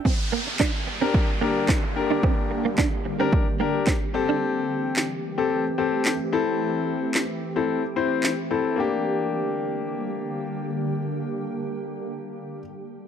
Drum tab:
CP |--x---x-|--x---x-|--x---x-|--x---x-|
SD |--o---o-|--o---o-|--o---o-|--o---o-|
BD |o-o-o-o-|o-o-o-o-|--------|--------|

CP |--------|--------|
SD |--------|--------|
BD |--------|--------|